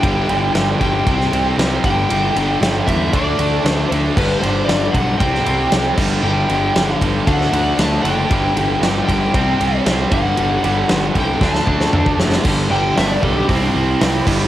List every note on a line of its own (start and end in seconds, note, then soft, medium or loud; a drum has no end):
0.00 0.22 G1 medium
0.00 0.28 G2 loud
0.00 0.29 D3 medium
0.00 0.30 G3 loud
0.00 0.77 G5 loud
0.00 kick loud
0.00 ride loud
0.29 0.48 G1 loud
0.29 0.55 G2 medium
0.29 0.55 D3 medium
0.29 0.56 G3 loud
0.29 ride medium
0.54 0.74 G1 loud
0.54 0.80 G2 medium
0.54 0.80 D3 loud
0.54 0.81 G3 loud
0.54 snare loud
0.54 ride loud
0.80 1.00 G1 medium
0.80 1.05 G2 medium
0.80 1.06 D3 medium
0.80 1.06 G3 loud
0.80 1.54 G5 loud
0.80 kick medium
0.80 ride medium
1.07 1.26 C2 medium
1.07 1.31 C3 medium
1.07 1.32 G3 loud
1.07 1.32 C4 loud
1.07 kick loud
1.07 ride loud
1.21 snare soft
1.32 1.51 C2 medium
1.32 1.57 C3 loud
1.32 1.57 G3 loud
1.32 1.58 C4 loud
1.32 ride medium
1.57 1.77 C2 medium
1.57 1.83 C3 loud
1.57 1.83 G3 loud
1.57 1.83 C4 loud
1.57 snare loud
1.57 ride medium
1.84 2.03 G1 medium
1.84 2.08 G2 loud
1.84 2.09 D3 loud
1.84 2.10 G3 loud
1.84 2.91 G5 loud
1.84 kick loud
1.84 ride medium
2.10 2.29 G1 medium
2.10 2.35 G2 medium
2.10 2.36 D3 loud
2.10 2.37 G3 loud
2.10 ride loud
2.36 2.55 G1 loud
2.36 2.60 G2 medium
2.36 2.61 D3 medium
2.36 2.62 G3 medium
2.36 ride medium
2.61 2.80 G1 medium
2.61 2.86 G2 loud
2.61 2.87 D3 loud
2.61 2.87 G3 loud
2.61 snare loud
2.61 ride loud
2.87 3.13 E2 medium
2.87 3.12 G2 medium
2.87 3.12 D3 medium
2.87 3.12 G3 loud
2.87 3.14 E5 medium
2.87 kick medium
2.87 ride medium
3.13 3.32 D2 loud
3.13 3.37 D3 loud
3.13 3.38 A3 loud
3.13 3.39 D4 loud
3.13 3.68 D5 medium
3.13 kick loud
3.13 ride loud
3.38 3.58 D2 medium
3.38 3.63 D3 medium
3.38 3.64 A3 loud
3.38 3.64 D4 loud
3.38 ride medium
3.64 3.84 D2 medium
3.64 3.89 D3 medium
3.64 3.90 A3 medium
3.64 3.91 D4 loud
3.64 snare loud
3.64 ride loud
3.68 3.88 C5 medium
3.91 4.10 D2 medium
3.91 4.15 D3 medium
3.91 4.15 A3 medium
3.91 4.16 D4 medium
3.91 ride medium
4.16 4.36 G1 medium
4.16 4.41 G2 medium
4.16 4.41 D3 loud
4.16 4.42 G3 loud
4.16 4.39 B4 medium
4.16 kick loud
4.16 crash loud
4.40 4.61 G1 medium
4.40 4.66 G2 medium
4.40 4.67 D3 medium
4.40 4.68 G3 medium
4.40 4.65 C5 medium
4.40 ride medium
4.64 4.87 G1 loud
4.64 4.93 G2 loud
4.64 4.93 D5 loud
4.69 4.94 D3 loud
4.69 4.94 G3 loud
4.69 snare loud
4.69 ride loud
4.91 5.13 B1 medium
4.91 5.18 G2 medium
4.91 5.19 D3 medium
4.91 5.18 F#5 loud
4.91 kick medium
4.91 ride medium
4.95 5.19 G3 medium
5.18 5.39 C2 medium
5.18 5.44 C3 medium
5.18 5.45 G3 medium
5.18 5.45 C4 loud
5.18 5.93 G5 loud
5.18 kick loud
5.18 ride loud
5.35 snare soft
5.45 5.65 C2 medium
5.45 5.70 C3 medium
5.45 5.71 G3 medium
5.45 5.71 C4 loud
5.45 ride medium
5.71 5.91 C2 medium
5.71 5.96 C3 loud
5.71 5.96 G3 medium
5.71 5.96 C4 loud
5.71 snare loud
5.71 ride loud
5.96 6.17 G1 medium
5.96 6.21 G2 loud
5.96 6.22 D3 loud
5.96 6.23 G3 loud
5.96 kick loud
5.96 crash loud
6.22 6.42 G1 medium
6.22 6.47 G2 loud
6.22 6.48 D3 loud
6.22 6.49 G3 loud
6.22 6.97 G5 loud
6.48 6.68 G1 loud
6.48 6.73 G2 medium
6.48 6.74 D3 loud
6.48 6.75 G3 loud
6.48 ride medium
6.74 6.94 G1 loud
6.74 6.99 G2 loud
6.74 7.00 D3 loud
6.74 7.01 G3 loud
6.74 snare loud
6.74 ride loud
7.00 7.20 G1 medium
7.00 7.25 G2 medium
7.00 7.25 D3 medium
7.00 7.26 G3 medium
7.00 kick medium
7.00 ride medium
7.27 7.46 D2 medium
7.27 7.51 D3 loud
7.27 7.52 A3 loud
7.27 7.53 D4 loud
7.27 7.80 F#5 loud
7.27 kick loud
7.27 ride loud
7.41 snare soft
7.52 7.72 D2 medium
7.52 7.77 D3 loud
7.52 7.78 A3 loud
7.52 7.79 D4 loud
7.52 ride medium
7.78 7.97 D2 medium
7.78 8.03 D3 medium
7.78 8.04 A3 loud
7.78 8.04 D4 loud
7.78 8.02 A5 loud
7.78 snare loud
7.78 ride loud
8.03 8.23 F#1 loud
8.03 8.29 D3 medium
8.03 8.29 A3 medium
8.03 8.29 D4 medium
8.03 9.03 G5 loud
8.03 ride medium
8.30 8.49 G1 medium
8.30 8.55 G2 loud
8.30 8.56 D3 loud
8.30 8.57 G3 loud
8.30 kick loud
8.30 ride loud
8.55 8.74 G1 loud
8.55 8.81 G2 medium
8.55 8.81 D3 loud
8.55 8.82 G3 loud
8.55 ride medium
8.81 9.00 G1 loud
8.81 9.07 G2 loud
8.81 9.08 D3 loud
8.81 9.09 G3 loud
8.81 snare loud
8.81 ride loud
9.05 9.27 G1 medium
9.05 9.33 G2 medium
9.05 9.80 G5 loud
9.05 kick medium
9.09 9.33 D3 medium
9.09 9.33 G3 medium
9.09 ride medium
9.34 9.53 C2 loud
9.34 9.58 C3 loud
9.34 9.59 G3 loud
9.34 9.60 C4 loud
9.34 kick loud
9.34 ride loud
9.59 9.79 C2 loud
9.59 9.84 C3 loud
9.59 9.85 G3 loud
9.59 9.86 C4 loud
9.59 ride medium
9.86 10.05 C2 medium
9.86 10.10 C3 medium
9.86 10.10 G3 loud
9.86 10.11 C4 loud
9.86 snare loud
9.86 ride loud
10.11 10.30 G1 medium
10.11 10.36 G2 loud
10.11 10.37 D3 loud
10.11 10.38 G3 loud
10.11 11.19 F#5 medium
10.11 kick loud
10.11 ride medium
10.37 10.57 G1 medium
10.37 10.63 G2 loud
10.37 10.63 D3 loud
10.37 10.64 G3 loud
10.37 ride loud
10.64 10.83 G1 loud
10.64 10.88 G2 medium
10.64 10.89 D3 medium
10.64 10.90 G3 loud
10.64 ride medium
10.89 11.09 G1 loud
10.89 11.14 G2 medium
10.89 11.15 D3 loud
10.89 11.16 G3 loud
10.89 snare loud
10.89 ride medium
11.15 11.34 C2 medium
11.15 11.40 G2 medium
11.15 11.40 D3 medium
11.15 11.40 G3 loud
11.15 kick medium
11.15 ride medium
11.20 11.44 G5 loud
11.41 11.60 D2 loud
11.41 11.65 D3 loud
11.41 11.66 A3 loud
11.41 11.67 D4 loud
11.41 kick loud
11.41 snare medium
11.45 12.17 A5 loud
11.55 snare medium
11.66 11.86 D2 medium
11.66 11.92 D3 loud
11.66 11.93 A3 loud
11.66 11.94 D4 loud
11.66 kick medium
11.81 snare medium
11.93 12.12 D2 medium
11.93 12.17 D3 medium
11.93 12.18 A3 loud
11.93 12.18 D4 loud
11.93 mid tom loud
12.06 kick medium
12.18 12.38 F#1 medium
12.18 12.43 D3 medium
12.18 12.43 A3 medium
12.18 12.44 D4 medium
12.18 snare loud
12.32 snare loud
12.45 12.64 G1 loud
12.45 12.69 G2 loud
12.45 12.69 D3 loud
12.45 12.70 G3 loud
12.45 kick loud
12.45 crash loud
12.70 12.90 G1 loud
12.70 12.94 G2 medium
12.70 12.95 D3 loud
12.70 12.96 G3 loud
12.70 12.96 G5 loud
12.96 13.16 G1 loud
12.96 13.21 G2 loud
12.96 13.22 D3 loud
12.96 13.23 G3 loud
12.96 13.11 E5 medium
12.96 snare loud
12.96 open hi-hat medium
13.11 13.23 D5 medium
13.22 13.42 B1 medium
13.22 13.47 G2 medium
13.22 13.47 D3 medium
13.22 13.48 G3 medium
13.22 13.35 A4 medium
13.22 kick medium
13.37 13.47 G4 medium
13.47 13.68 C2 loud
13.47 13.73 C3 medium
13.47 13.73 G3 loud
13.47 13.74 C4 loud
13.47 13.60 E4 medium
13.47 kick loud
13.47 open hi-hat medium
13.62 13.74 D4 medium
13.74 13.94 C2 medium
13.74 13.99 C3 loud
13.74 14.00 G3 loud
13.74 14.01 C4 loud
13.74 14.48 E4 medium
14.00 14.20 C2 medium
14.00 14.25 C3 medium
14.00 14.25 G3 loud
14.00 14.25 C4 loud
14.00 snare loud
14.00 open hi-hat medium
14.26 14.46 G1 medium
14.26 14.48 G2 medium
14.26 14.48 D3 loud
14.26 14.48 G3 loud
14.26 kick loud
14.26 crash loud